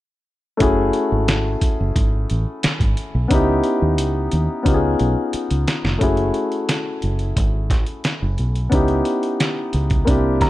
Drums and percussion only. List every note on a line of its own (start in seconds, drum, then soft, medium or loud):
0.60 kick medium
0.60 closed hi-hat medium
0.93 closed hi-hat medium
1.28 snare loud
1.28 closed hi-hat medium
1.61 kick medium
1.61 closed hi-hat medium
1.96 kick medium
1.96 closed hi-hat medium
2.30 closed hi-hat medium
2.63 snare loud
2.63 closed hi-hat medium
2.80 kick medium
2.80 closed hi-hat soft
2.97 closed hi-hat medium
3.31 kick loud
3.31 closed hi-hat medium
3.64 closed hi-hat medium
3.98 closed hi-hat medium
4.32 closed hi-hat medium
4.66 kick medium
4.66 closed hi-hat medium
4.99 closed hi-hat medium
5.33 closed hi-hat medium
5.51 closed hi-hat soft
5.68 snare medium
5.68 closed hi-hat medium
5.85 snare medium
6.01 kick medium
6.01 closed hi-hat medium
6.17 closed hi-hat soft
6.34 closed hi-hat medium
6.52 closed hi-hat soft
6.69 snare medium
6.69 closed hi-hat medium
7.02 closed hi-hat medium
7.19 closed hi-hat soft
7.37 kick medium
7.37 closed hi-hat medium
7.70 kick medium
7.70 snare soft
7.70 closed hi-hat medium
7.86 closed hi-hat soft
8.04 snare medium
8.04 closed hi-hat medium
8.38 closed hi-hat medium
8.55 closed hi-hat soft
8.72 kick medium
8.72 closed hi-hat medium
8.88 closed hi-hat soft
9.05 closed hi-hat medium
9.23 closed hi-hat soft
9.40 snare medium
9.40 closed hi-hat medium
9.73 closed hi-hat medium
9.90 kick medium
9.90 closed hi-hat soft
10.07 kick medium
10.07 closed hi-hat medium
10.41 kick medium
10.41 snare soft
10.41 closed hi-hat medium